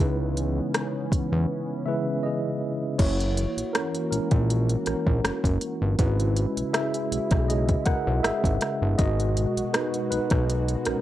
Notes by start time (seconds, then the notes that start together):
0.00 C#2 C#3 E3 G#3 B3 C#4 D#4 E4 B4
0.37 closed hi-hat
0.74 cross-stick, closed hi-hat
1.12 E2, kick, closed hi-hat
1.32 E2
1.86 C#3 G#3 C#4 E4 G#4 B4 E5
2.23 G#4 D#5
2.98 F#1 E3 A#3 E4 F#4 C#5, kick, closed hi-hat, crash
3.20 closed hi-hat
3.37 closed hi-hat
3.57 A#1, closed hi-hat
3.73 C#4 A#4, cross-stick, closed hi-hat
3.95 closed hi-hat
4.11 A#1 G#3 A#3 C#4 E4 A#4, closed hi-hat
4.31 A#1, kick, closed hi-hat
4.50 closed hi-hat
4.69 closed hi-hat
4.86 A#1 C#4 A#4, cross-stick, closed hi-hat
5.07 A#1, kick
5.24 F#1, cross-stick, closed hi-hat
5.44 F#1, kick, closed hi-hat
5.61 closed hi-hat
5.82 G1
5.99 G#1 C#3 G#3 C#4 E4 F#4 B4, kick, closed hi-hat
6.20 closed hi-hat
6.37 closed hi-hat
6.57 B1, closed hi-hat
6.73 G#4 E5, cross-stick, closed hi-hat
6.94 closed hi-hat
7.11 B1 G#3 C#4 F#4, closed hi-hat
7.31 B1, kick, cross-stick, closed hi-hat
7.48 G#4 D#5, closed hi-hat
7.69 kick, closed hi-hat
7.86 B1 A#4 F#5, kick, cross-stick, closed hi-hat
8.07 B1
8.23 G#1 G#4 E5, cross-stick, closed hi-hat
8.44 G#1, kick, closed hi-hat
8.61 cross-stick, closed hi-hat
8.82 G1
8.98 G#1 B2 G#3 B3 F#4 A#4 D#5, kick, closed hi-hat
9.20 closed hi-hat
9.37 closed hi-hat
9.57 B1, closed hi-hat
9.73 D#4 B4, cross-stick, closed hi-hat
9.94 closed hi-hat
10.10 B1 D#4 B4, closed hi-hat
10.30 B1, kick, cross-stick, closed hi-hat
10.50 closed hi-hat
10.68 closed hi-hat
10.85 B1 C#4 A#4, cross-stick, closed hi-hat